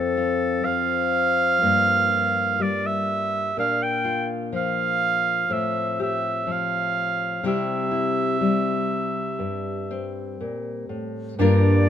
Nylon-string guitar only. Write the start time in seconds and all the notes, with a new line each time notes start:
Already playing: F2 F3 C4 F4
0.17 F4
0.63 F3
1.62 G2 A#3
2.10 F4
2.59 G3
3.57 A#2 D4
4.04 F4
4.53 F3
5.50 A2 C4
6.00 G4
6.47 F3
7.43 C3 G3 C4 E4 G4
7.91 E4
8.41 G3
9.39 G2
9.91 C4
10.40 A#2
10.89 A2
11.39 G2 G3 A#3 F4 A#4